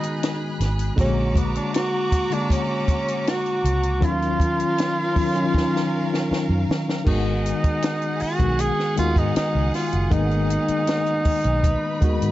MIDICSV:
0, 0, Header, 1, 7, 480
1, 0, Start_track
1, 0, Tempo, 761421
1, 615, Time_signature, 4, 2, 24, 8
1, 7763, End_track
2, 0, Start_track
2, 0, Title_t, "Violin section"
2, 0, Program_c, 0, 48
2, 0, Note_on_c, 0, 68, 83
2, 0, Note_on_c, 0, 83, 86
2, 0, Note_on_c, 0, 90, 85
2, 589, Note_off_c, 0, 68, 0
2, 589, Note_off_c, 0, 90, 0
2, 592, Note_off_c, 0, 83, 0
2, 613, Note_on_c, 0, 66, 90
2, 614, Note_on_c, 0, 82, 89
2, 617, Note_on_c, 0, 86, 83
2, 2508, Note_off_c, 0, 66, 0
2, 2509, Note_off_c, 0, 82, 0
2, 2510, Note_off_c, 0, 86, 0
2, 2529, Note_on_c, 0, 61, 81
2, 2534, Note_on_c, 0, 70, 84
2, 2537, Note_on_c, 0, 77, 96
2, 4427, Note_off_c, 0, 61, 0
2, 4430, Note_off_c, 0, 70, 0
2, 4431, Note_off_c, 0, 77, 0
2, 4456, Note_on_c, 0, 68, 89
2, 4457, Note_on_c, 0, 78, 91
2, 7315, Note_off_c, 0, 68, 0
2, 7315, Note_off_c, 0, 78, 0
2, 7331, Note_on_c, 0, 71, 77
2, 7332, Note_on_c, 0, 83, 83
2, 7763, Note_off_c, 0, 71, 0
2, 7763, Note_off_c, 0, 83, 0
2, 7763, End_track
3, 0, Start_track
3, 0, Title_t, "Tenor saxophone"
3, 0, Program_c, 1, 66
3, 0, Note_on_c, 1, 63, 81
3, 385, Note_off_c, 1, 63, 0
3, 631, Note_on_c, 1, 61, 91
3, 868, Note_on_c, 1, 59, 80
3, 877, Note_off_c, 1, 61, 0
3, 990, Note_on_c, 1, 62, 81
3, 999, Note_off_c, 1, 59, 0
3, 1100, Note_on_c, 1, 66, 101
3, 1109, Note_off_c, 1, 62, 0
3, 1470, Note_on_c, 1, 62, 84
3, 1479, Note_off_c, 1, 66, 0
3, 1593, Note_on_c, 1, 61, 81
3, 1603, Note_off_c, 1, 62, 0
3, 2072, Note_on_c, 1, 66, 91
3, 2081, Note_off_c, 1, 61, 0
3, 2552, Note_on_c, 1, 65, 93
3, 2562, Note_off_c, 1, 66, 0
3, 4224, Note_off_c, 1, 65, 0
3, 4459, Note_on_c, 1, 63, 88
3, 5178, Note_on_c, 1, 66, 88
3, 5187, Note_off_c, 1, 63, 0
3, 5422, Note_on_c, 1, 68, 95
3, 5431, Note_off_c, 1, 66, 0
3, 5659, Note_off_c, 1, 68, 0
3, 5665, Note_on_c, 1, 65, 91
3, 5791, Note_on_c, 1, 63, 83
3, 5801, Note_off_c, 1, 65, 0
3, 5902, Note_off_c, 1, 63, 0
3, 5906, Note_on_c, 1, 63, 86
3, 6125, Note_off_c, 1, 63, 0
3, 6145, Note_on_c, 1, 65, 71
3, 6384, Note_on_c, 1, 63, 91
3, 6393, Note_off_c, 1, 65, 0
3, 7763, Note_off_c, 1, 63, 0
3, 7763, End_track
4, 0, Start_track
4, 0, Title_t, "Tine electric piano"
4, 0, Program_c, 2, 4
4, 0, Control_c, 2, 64, 127
4, 0, Note_on_c, 2, 51, 64
4, 0, Note_on_c, 2, 56, 60
4, 0, Note_on_c, 2, 59, 59
4, 0, Note_on_c, 2, 66, 74
4, 257, Note_off_c, 2, 51, 0
4, 260, Note_off_c, 2, 56, 0
4, 262, Note_off_c, 2, 59, 0
4, 266, Note_off_c, 2, 66, 0
4, 604, Note_on_c, 2, 50, 86
4, 611, Note_on_c, 2, 56, 76
4, 615, Note_on_c, 2, 58, 78
4, 624, Control_c, 2, 64, 0
4, 624, Note_on_c, 2, 66, 90
4, 723, Control_c, 2, 64, 127
4, 1245, Note_off_c, 2, 50, 0
4, 1248, Note_off_c, 2, 56, 0
4, 1250, Note_off_c, 2, 58, 0
4, 1255, Note_off_c, 2, 66, 0
4, 1452, Note_on_c, 2, 50, 68
4, 1459, Note_on_c, 2, 56, 57
4, 1465, Note_on_c, 2, 58, 63
4, 1470, Note_on_c, 2, 66, 71
4, 2179, Note_off_c, 2, 50, 0
4, 2183, Note_off_c, 2, 56, 0
4, 2186, Note_off_c, 2, 58, 0
4, 2188, Note_off_c, 2, 66, 0
4, 2525, Note_on_c, 2, 51, 88
4, 2530, Note_on_c, 2, 54, 78
4, 2533, Note_on_c, 2, 61, 78
4, 2539, Note_on_c, 2, 65, 95
4, 2542, Control_c, 2, 64, 0
4, 2661, Control_c, 2, 64, 127
4, 3074, Note_off_c, 2, 51, 0
4, 3077, Note_off_c, 2, 54, 0
4, 3078, Note_off_c, 2, 61, 0
4, 3081, Note_off_c, 2, 65, 0
4, 3245, Note_on_c, 2, 51, 74
4, 3253, Note_on_c, 2, 54, 66
4, 3255, Note_on_c, 2, 61, 59
4, 3262, Note_on_c, 2, 65, 80
4, 3341, Note_off_c, 2, 51, 0
4, 3344, Note_off_c, 2, 54, 0
4, 3346, Note_off_c, 2, 61, 0
4, 3349, Note_off_c, 2, 65, 0
4, 3365, Note_on_c, 2, 51, 72
4, 3373, Note_on_c, 2, 54, 74
4, 3376, Note_on_c, 2, 61, 71
4, 3383, Note_on_c, 2, 63, 85
4, 4096, Note_off_c, 2, 51, 0
4, 4100, Note_off_c, 2, 54, 0
4, 4102, Note_off_c, 2, 61, 0
4, 4105, Note_off_c, 2, 63, 0
4, 4443, Note_on_c, 2, 51, 86
4, 4448, Note_on_c, 2, 56, 78
4, 4453, Note_on_c, 2, 59, 76
4, 4460, Note_on_c, 2, 66, 98
4, 4464, Control_c, 2, 64, 0
4, 4586, Control_c, 2, 64, 127
4, 5085, Note_off_c, 2, 51, 0
4, 5088, Note_off_c, 2, 56, 0
4, 5090, Note_off_c, 2, 59, 0
4, 5094, Note_off_c, 2, 66, 0
4, 5285, Note_on_c, 2, 51, 59
4, 5293, Note_on_c, 2, 56, 53
4, 5298, Note_on_c, 2, 59, 56
4, 5306, Note_on_c, 2, 66, 70
4, 5563, Note_off_c, 2, 51, 0
4, 5567, Note_off_c, 2, 56, 0
4, 5570, Note_off_c, 2, 59, 0
4, 5574, Note_off_c, 2, 66, 0
4, 5648, Note_on_c, 2, 51, 68
4, 5655, Note_on_c, 2, 56, 63
4, 5659, Note_on_c, 2, 59, 60
4, 5668, Note_on_c, 2, 66, 74
4, 6198, Note_off_c, 2, 51, 0
4, 6201, Note_off_c, 2, 56, 0
4, 6204, Note_off_c, 2, 59, 0
4, 6208, Note_off_c, 2, 66, 0
4, 6371, Note_on_c, 2, 51, 90
4, 6375, Note_on_c, 2, 56, 77
4, 6378, Note_on_c, 2, 58, 66
4, 6389, Note_on_c, 2, 63, 94
4, 6419, Note_off_c, 2, 58, 0
4, 6421, Note_on_c, 2, 59, 79
4, 7102, Note_off_c, 2, 51, 0
4, 7104, Note_off_c, 2, 56, 0
4, 7111, Note_off_c, 2, 63, 0
4, 7127, Note_off_c, 2, 59, 0
4, 7571, Note_on_c, 2, 51, 83
4, 7577, Note_on_c, 2, 56, 75
4, 7584, Note_on_c, 2, 59, 72
4, 7588, Note_on_c, 2, 66, 91
4, 7763, Note_off_c, 2, 51, 0
4, 7763, Note_off_c, 2, 56, 0
4, 7763, Note_off_c, 2, 59, 0
4, 7763, Note_off_c, 2, 66, 0
4, 7763, End_track
5, 0, Start_track
5, 0, Title_t, "Fingered electric bass"
5, 0, Program_c, 3, 33
5, 380, Note_on_c, 3, 32, 80
5, 566, Note_off_c, 3, 32, 0
5, 618, Note_on_c, 3, 34, 87
5, 992, Note_off_c, 3, 34, 0
5, 2296, Note_on_c, 3, 37, 83
5, 2538, Note_off_c, 3, 37, 0
5, 2538, Note_on_c, 3, 39, 91
5, 2912, Note_off_c, 3, 39, 0
5, 4094, Note_on_c, 3, 42, 77
5, 4188, Note_off_c, 3, 42, 0
5, 4218, Note_on_c, 3, 51, 72
5, 4405, Note_off_c, 3, 51, 0
5, 4455, Note_on_c, 3, 32, 89
5, 4737, Note_off_c, 3, 32, 0
5, 5293, Note_on_c, 3, 35, 75
5, 5483, Note_off_c, 3, 35, 0
5, 5662, Note_on_c, 3, 39, 75
5, 5754, Note_off_c, 3, 39, 0
5, 5777, Note_on_c, 3, 44, 84
5, 5871, Note_off_c, 3, 44, 0
5, 6021, Note_on_c, 3, 37, 79
5, 6113, Note_off_c, 3, 37, 0
5, 6261, Note_on_c, 3, 30, 78
5, 6354, Note_off_c, 3, 30, 0
5, 6378, Note_on_c, 3, 32, 98
5, 6660, Note_off_c, 3, 32, 0
5, 7218, Note_on_c, 3, 35, 85
5, 7407, Note_off_c, 3, 35, 0
5, 7578, Note_on_c, 3, 39, 84
5, 7673, Note_off_c, 3, 39, 0
5, 7703, Note_on_c, 3, 44, 81
5, 7763, Note_off_c, 3, 44, 0
5, 7763, End_track
6, 0, Start_track
6, 0, Title_t, "Muted fingered electric bass strokes"
6, 3979, Note_on_c, 9, 29, 37
6, 4042, Note_off_c, 9, 29, 0
6, 4818, Note_on_c, 9, 29, 42
6, 4881, Note_off_c, 9, 29, 0
6, 5181, Note_on_c, 9, 29, 39
6, 5244, Note_off_c, 9, 29, 0
6, 5900, Note_on_c, 9, 29, 38
6, 5963, Note_off_c, 9, 29, 0
6, 6738, Note_on_c, 9, 29, 43
6, 6801, Note_off_c, 9, 29, 0
6, 7095, Note_on_c, 9, 29, 42
6, 7158, Note_off_c, 9, 29, 0
6, 7763, End_track
7, 0, Start_track
7, 0, Title_t, "Drums"
7, 21, Note_on_c, 9, 42, 48
7, 84, Note_off_c, 9, 42, 0
7, 145, Note_on_c, 9, 42, 85
7, 150, Note_on_c, 9, 38, 96
7, 208, Note_off_c, 9, 42, 0
7, 213, Note_off_c, 9, 38, 0
7, 382, Note_on_c, 9, 42, 64
7, 388, Note_on_c, 9, 38, 34
7, 445, Note_off_c, 9, 42, 0
7, 451, Note_off_c, 9, 38, 0
7, 498, Note_on_c, 9, 42, 50
7, 561, Note_off_c, 9, 42, 0
7, 617, Note_on_c, 9, 36, 98
7, 621, Note_on_c, 9, 42, 77
7, 680, Note_off_c, 9, 36, 0
7, 684, Note_off_c, 9, 42, 0
7, 855, Note_on_c, 9, 36, 78
7, 861, Note_on_c, 9, 42, 69
7, 918, Note_off_c, 9, 36, 0
7, 924, Note_off_c, 9, 42, 0
7, 980, Note_on_c, 9, 42, 43
7, 1043, Note_off_c, 9, 42, 0
7, 1098, Note_on_c, 9, 42, 81
7, 1110, Note_on_c, 9, 38, 101
7, 1162, Note_off_c, 9, 42, 0
7, 1173, Note_off_c, 9, 38, 0
7, 1337, Note_on_c, 9, 36, 78
7, 1338, Note_on_c, 9, 42, 69
7, 1400, Note_off_c, 9, 36, 0
7, 1401, Note_off_c, 9, 42, 0
7, 1459, Note_on_c, 9, 42, 43
7, 1522, Note_off_c, 9, 42, 0
7, 1578, Note_on_c, 9, 36, 82
7, 1585, Note_on_c, 9, 42, 86
7, 1641, Note_off_c, 9, 36, 0
7, 1648, Note_off_c, 9, 42, 0
7, 1817, Note_on_c, 9, 36, 87
7, 1819, Note_on_c, 9, 42, 59
7, 1880, Note_off_c, 9, 36, 0
7, 1882, Note_off_c, 9, 42, 0
7, 1944, Note_on_c, 9, 42, 52
7, 2007, Note_off_c, 9, 42, 0
7, 2063, Note_on_c, 9, 42, 80
7, 2068, Note_on_c, 9, 38, 90
7, 2126, Note_off_c, 9, 42, 0
7, 2131, Note_off_c, 9, 38, 0
7, 2180, Note_on_c, 9, 42, 29
7, 2243, Note_off_c, 9, 42, 0
7, 2303, Note_on_c, 9, 42, 62
7, 2366, Note_off_c, 9, 42, 0
7, 2416, Note_on_c, 9, 42, 49
7, 2479, Note_off_c, 9, 42, 0
7, 2536, Note_on_c, 9, 36, 98
7, 2538, Note_on_c, 9, 42, 77
7, 2599, Note_off_c, 9, 36, 0
7, 2601, Note_off_c, 9, 42, 0
7, 2662, Note_on_c, 9, 42, 29
7, 2725, Note_off_c, 9, 42, 0
7, 2773, Note_on_c, 9, 36, 74
7, 2780, Note_on_c, 9, 42, 67
7, 2836, Note_off_c, 9, 36, 0
7, 2843, Note_off_c, 9, 42, 0
7, 2898, Note_on_c, 9, 42, 40
7, 2961, Note_off_c, 9, 42, 0
7, 3015, Note_on_c, 9, 42, 82
7, 3027, Note_on_c, 9, 38, 97
7, 3078, Note_off_c, 9, 42, 0
7, 3090, Note_off_c, 9, 38, 0
7, 3253, Note_on_c, 9, 46, 46
7, 3255, Note_on_c, 9, 36, 77
7, 3316, Note_off_c, 9, 46, 0
7, 3318, Note_off_c, 9, 36, 0
7, 3376, Note_on_c, 9, 42, 45
7, 3439, Note_off_c, 9, 42, 0
7, 3495, Note_on_c, 9, 36, 81
7, 3512, Note_on_c, 9, 38, 50
7, 3558, Note_off_c, 9, 36, 0
7, 3575, Note_off_c, 9, 38, 0
7, 3631, Note_on_c, 9, 38, 45
7, 3694, Note_off_c, 9, 38, 0
7, 3870, Note_on_c, 9, 38, 54
7, 3933, Note_off_c, 9, 38, 0
7, 3989, Note_on_c, 9, 38, 71
7, 4052, Note_off_c, 9, 38, 0
7, 4231, Note_on_c, 9, 38, 91
7, 4294, Note_off_c, 9, 38, 0
7, 4346, Note_on_c, 9, 38, 69
7, 4409, Note_off_c, 9, 38, 0
7, 4455, Note_on_c, 9, 36, 99
7, 4457, Note_on_c, 9, 49, 81
7, 4518, Note_off_c, 9, 36, 0
7, 4520, Note_off_c, 9, 49, 0
7, 4701, Note_on_c, 9, 42, 70
7, 4764, Note_off_c, 9, 42, 0
7, 4815, Note_on_c, 9, 42, 45
7, 4818, Note_on_c, 9, 36, 87
7, 4878, Note_off_c, 9, 42, 0
7, 4881, Note_off_c, 9, 36, 0
7, 4932, Note_on_c, 9, 42, 90
7, 4944, Note_on_c, 9, 38, 98
7, 4995, Note_off_c, 9, 42, 0
7, 5007, Note_off_c, 9, 38, 0
7, 5054, Note_on_c, 9, 42, 33
7, 5117, Note_off_c, 9, 42, 0
7, 5168, Note_on_c, 9, 46, 47
7, 5231, Note_off_c, 9, 46, 0
7, 5293, Note_on_c, 9, 36, 77
7, 5293, Note_on_c, 9, 42, 49
7, 5356, Note_off_c, 9, 36, 0
7, 5356, Note_off_c, 9, 42, 0
7, 5413, Note_on_c, 9, 42, 91
7, 5476, Note_off_c, 9, 42, 0
7, 5545, Note_on_c, 9, 38, 28
7, 5608, Note_off_c, 9, 38, 0
7, 5657, Note_on_c, 9, 42, 66
7, 5720, Note_off_c, 9, 42, 0
7, 5775, Note_on_c, 9, 36, 80
7, 5780, Note_on_c, 9, 42, 48
7, 5838, Note_off_c, 9, 36, 0
7, 5843, Note_off_c, 9, 42, 0
7, 5901, Note_on_c, 9, 42, 86
7, 5906, Note_on_c, 9, 38, 91
7, 5964, Note_off_c, 9, 42, 0
7, 5969, Note_off_c, 9, 38, 0
7, 6140, Note_on_c, 9, 46, 47
7, 6146, Note_on_c, 9, 38, 33
7, 6203, Note_off_c, 9, 46, 0
7, 6209, Note_off_c, 9, 38, 0
7, 6257, Note_on_c, 9, 42, 53
7, 6320, Note_off_c, 9, 42, 0
7, 6377, Note_on_c, 9, 36, 109
7, 6379, Note_on_c, 9, 42, 77
7, 6440, Note_off_c, 9, 36, 0
7, 6442, Note_off_c, 9, 42, 0
7, 6501, Note_on_c, 9, 42, 30
7, 6564, Note_off_c, 9, 42, 0
7, 6620, Note_on_c, 9, 42, 67
7, 6684, Note_off_c, 9, 42, 0
7, 6735, Note_on_c, 9, 42, 45
7, 6798, Note_off_c, 9, 42, 0
7, 6854, Note_on_c, 9, 42, 80
7, 6865, Note_on_c, 9, 38, 96
7, 6917, Note_off_c, 9, 42, 0
7, 6928, Note_off_c, 9, 38, 0
7, 6974, Note_on_c, 9, 42, 32
7, 7037, Note_off_c, 9, 42, 0
7, 7091, Note_on_c, 9, 46, 53
7, 7096, Note_on_c, 9, 36, 78
7, 7155, Note_off_c, 9, 46, 0
7, 7159, Note_off_c, 9, 36, 0
7, 7213, Note_on_c, 9, 42, 51
7, 7276, Note_off_c, 9, 42, 0
7, 7337, Note_on_c, 9, 36, 81
7, 7337, Note_on_c, 9, 42, 86
7, 7400, Note_off_c, 9, 36, 0
7, 7400, Note_off_c, 9, 42, 0
7, 7577, Note_on_c, 9, 36, 92
7, 7577, Note_on_c, 9, 42, 64
7, 7640, Note_off_c, 9, 36, 0
7, 7640, Note_off_c, 9, 42, 0
7, 7703, Note_on_c, 9, 42, 52
7, 7763, Note_off_c, 9, 42, 0
7, 7763, End_track
0, 0, End_of_file